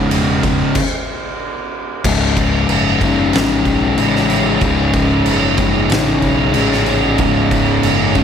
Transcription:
0.00 0.74 C#2 loud
0.00 0.75 G#2 loud
0.00 0.72 C#3 medium
0.00 0.75 C#3 loud
0.00 0.72 G#3 medium
0.00 0.72 B3 medium
0.11 0.60 E1 medium
0.11 ride medium
0.43 kick medium
0.43 ride medium
0.75 kick loud
0.75 crash loud
2.03 2.62 C#1 medium
2.03 3.03 C#2 loud
2.03 3.00 G#2 loud
2.03 8.24 C#3 medium
2.03 3.01 C#3 loud
2.03 8.24 G#3 medium
2.03 8.24 C#4 medium
2.03 kick loud
2.03 crash loud
2.03 crash medium
2.37 kick medium
2.37 crash medium
2.69 3.27 F#1 medium
2.69 crash medium
3.01 3.97 C#2 medium
3.01 3.97 G#2 medium
3.01 3.99 C#3 medium
3.01 kick medium
3.01 crash medium
3.33 3.62 A1 medium
3.33 snare loud
3.33 crash medium
3.65 3.94 B1 medium
3.65 kick medium
3.65 crash medium
3.97 4.55 A1 medium
3.97 4.61 C#2 medium
3.97 4.61 G#2 medium
3.97 4.63 C#3 loud
3.97 crash medium
4.16 snare soft
4.30 crash medium
4.61 5.19 C#1 loud
4.61 5.59 C#2 loud
4.61 5.57 G#2 loud
4.61 5.57 C#3 loud
4.61 kick medium
4.61 crash medium
4.93 kick loud
4.93 crash medium
5.26 5.84 F#1 loud
5.26 crash medium
5.57 6.54 C#2 medium
5.57 6.53 G#2 medium
5.57 6.57 C#3 loud
5.57 kick loud
5.57 crash medium
5.89 6.19 A1 medium
5.89 snare loud
5.89 crash medium
6.22 6.52 B1 medium
6.22 kick medium
6.22 crash medium
6.54 7.13 A1 medium
6.54 7.19 C#2 medium
6.54 7.18 G#2 medium
6.54 7.21 C#3 loud
6.54 crash medium
6.72 snare soft
6.86 crash medium
7.18 7.77 C#1 loud
7.18 8.17 C#2 medium
7.18 8.14 G#2 loud
7.18 8.15 C#3 loud
7.18 kick loud
7.18 crash medium
7.51 kick loud
7.51 crash medium
7.83 8.24 F#1 medium
7.83 crash medium
8.15 8.24 C#2 medium
8.15 8.24 G#2 medium
8.15 8.24 C#3 medium
8.15 kick medium
8.15 crash medium

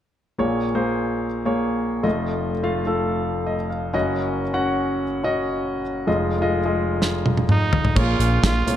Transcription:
0.38 2.01 A#1 medium
0.38 2.01 A#2 medium
0.38 0.64 A#3 medium
0.38 0.64 G#4 medium
0.38 0.64 C#5 medium
0.75 1.25 A#3 medium
0.75 1.25 G#4 medium
0.75 1.25 C5 medium
1.45 2.04 A#3 medium
1.45 2.05 G#4 medium
1.45 2.05 C#5 medium
2.03 3.90 F1 medium
2.03 3.90 F2 medium
2.03 2.51 A3 medium
2.03 2.51 F4 medium
2.03 2.52 D#5 medium
2.63 2.81 A3 medium
2.63 2.81 F4 medium
2.63 2.81 F5 medium
2.87 3.54 A3 medium
2.87 3.55 F4 medium
2.87 3.55 A4 medium
3.47 3.69 D#5 medium
3.70 3.92 F5 medium
3.94 5.80 F#1 medium
3.94 5.80 F#2 medium
3.94 4.41 C#4 medium
3.94 4.42 F#4 medium
3.94 4.42 D#5 medium
3.94 4.16 F#5 medium
4.53 5.04 C#4 medium
4.53 5.04 F#4 medium
4.53 5.04 F#5 medium
5.24 5.83 C#4 medium
5.24 5.83 F#4 medium
5.24 5.83 D#5 medium
6.07 7.92 F1 medium
6.07 7.92 F2 medium
6.07 6.32 G#3 medium
6.07 6.32 F4 medium
6.07 6.33 D#5 medium
6.42 6.59 G#3 medium
6.42 6.59 F4 medium
6.42 6.59 D#5 medium
6.65 7.33 G#3 medium
6.65 7.33 F4 medium
6.65 7.33 D#5 medium
7.02 snare soft
7.26 high tom medium
7.37 high tom soft
7.49 8.00 D#4 medium
7.49 mid tom medium
7.73 floor tom medium
7.85 floor tom medium
7.95 8.16 A#1 medium
7.95 8.63 A#2 medium
7.95 8.46 A#3 medium
7.95 8.45 F4 medium
7.95 8.46 G#4 medium
7.95 8.47 C#5 medium
7.95 kick medium
7.95 crash medium
8.19 8.39 A#1 medium
8.19 closed hi-hat medium
8.43 8.63 A#1 medium
8.43 8.77 F4 medium
8.43 kick loud
8.43 snare medium
8.43 closed hi-hat medium
8.66 8.77 C2 medium
8.66 8.77 A#3 medium
8.66 8.77 G#4 soft
8.66 8.77 C#5 medium
8.66 closed hi-hat medium

